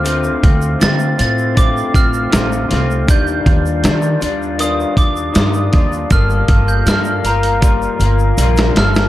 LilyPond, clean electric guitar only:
\new Staff \with { instrumentName = "Clean electric guitar" } { \time 4/4 \key g \minor \tempo 4 = 79 <d a c' f'>8 <a c' f'>8 <d a c' f'>8 <a c' f'>8 <d a c' f'>8 <a c' f'>8 <d a c' f'>8 <a c' f'>8 | <ees g d' f'>8 <g d' f'>8 <ees g d' f'>8 <g d' f'>8 <ees g d' f'>8 <g d' f'>8 <ees g d' f'>8 <g d' f'>8 | <g bes f' a'>8 <bes f' a'>8 <g bes f' a'>8 <bes f'>8 <g bes f'>8 <bes f'>8 <g bes f'>8 <bes f' a'>8 | }